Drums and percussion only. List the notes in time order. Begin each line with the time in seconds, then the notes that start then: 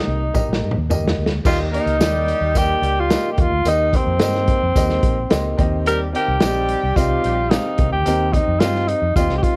0.34 kick, mid tom, tambourine
0.53 snare
0.71 mid tom
0.90 floor tom, tambourine
1.08 snare
1.26 snare
1.45 kick, crash, tambourine
1.74 closed hi-hat
1.87 closed hi-hat
2.01 snare, closed hi-hat, tambourine
2.28 closed hi-hat
2.55 kick, closed hi-hat, tambourine
2.83 closed hi-hat
3.10 snare, closed hi-hat, tambourine
3.38 kick, closed hi-hat
3.65 closed hi-hat, tambourine
3.93 kick, closed hi-hat
4.19 snare, closed hi-hat, tambourine
4.34 snare
4.47 kick, closed hi-hat
4.76 kick, closed hi-hat, tambourine
4.89 snare
5.03 kick, closed hi-hat
5.30 snare, closed hi-hat, tambourine
5.58 kick, closed hi-hat
5.86 closed hi-hat, tambourine
6.15 closed hi-hat
6.40 snare, closed hi-hat, tambourine
6.69 closed hi-hat
6.96 kick, closed hi-hat, tambourine
7.24 closed hi-hat
7.51 snare, closed hi-hat, tambourine
7.78 kick, closed hi-hat
8.06 closed hi-hat, tambourine
8.34 kick, closed hi-hat
8.60 snare, closed hi-hat, tambourine
8.75 snare
8.88 closed hi-hat
9.16 kick, closed hi-hat, tambourine
9.29 snare
9.43 kick, closed hi-hat